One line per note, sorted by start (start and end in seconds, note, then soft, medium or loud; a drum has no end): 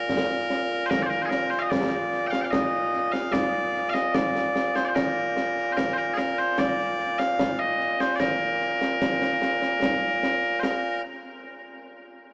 0.00 11.01 A#2 medium
0.00 0.86 A#4 loud
0.09 concert bass drum medium
0.09 snare medium
0.50 snare medium
0.86 1.02 A#4 loud
0.86 0.90 C5 loud
0.91 concert bass drum medium
0.91 snare loud
1.02 1.09 C5 medium
1.02 1.06 D5 medium
1.09 1.22 A#4 medium
1.09 snare soft
1.22 1.30 G#4 medium
1.22 1.26 C5 medium
1.30 1.50 A#4 loud
1.30 snare medium
1.50 1.59 C5 medium
1.50 snare soft
1.59 1.70 D#5 medium
1.59 1.62 F5 medium
1.70 2.27 D5 medium
1.70 concert bass drum medium
1.70 snare loud
1.92 snare soft
2.12 snare soft
2.27 2.41 F5 loud
2.27 2.31 G5 loud
2.33 snare medium
2.41 2.51 F5 medium
2.41 2.44 G5 medium
2.51 3.12 D#5 loud
2.51 concert bass drum medium
2.51 snare loud
2.93 snare soft
3.12 3.32 F5 loud
3.12 snare medium
3.32 3.90 D5 loud
3.32 concert bass drum medium
3.32 snare medium
3.74 snare soft
3.90 3.94 F5 medium
3.94 4.14 D#5 medium
3.94 snare medium
4.14 4.75 D5 loud
4.14 concert bass drum medium
4.14 snare medium
4.35 snare medium
4.56 snare medium
4.75 4.85 C5 medium
4.75 snare medium
4.85 4.95 C5 medium
4.85 4.88 D5 medium
4.95 5.72 A#4 medium
4.95 concert bass drum medium
4.95 snare loud
5.37 snare medium
5.57 snare soft
5.72 5.77 C5 medium
5.77 5.93 A#4 medium
5.77 concert bass drum medium
5.77 snare medium
5.93 5.98 C5 medium
5.98 6.14 A#4 medium
5.98 snare soft
6.14 6.18 G#4 medium
6.14 6.38 A#4 loud
6.14 snare medium
6.38 6.58 C5 medium
6.38 snare soft
6.58 7.19 D5 loud
6.58 concert bass drum medium
6.58 snare medium
6.78 snare soft
6.99 snare soft
7.19 7.59 F5 loud
7.19 snare medium
7.39 concert bass drum medium
7.39 snare loud
7.59 8.00 D#5 medium
7.80 snare soft
8.00 8.15 C5 medium
8.00 snare medium
8.15 8.20 D5 medium
8.20 10.60 A#4 medium
8.20 concert bass drum medium
8.20 snare medium
8.61 snare soft
8.81 snare medium
9.02 concert bass drum medium
9.02 snare medium
9.22 snare medium
9.42 snare medium
9.62 snare medium
9.82 concert bass drum medium
9.82 snare loud
10.23 snare medium
10.44 snare soft
10.60 11.01 A#4 medium
10.60 10.63 C5 medium
10.60 snare medium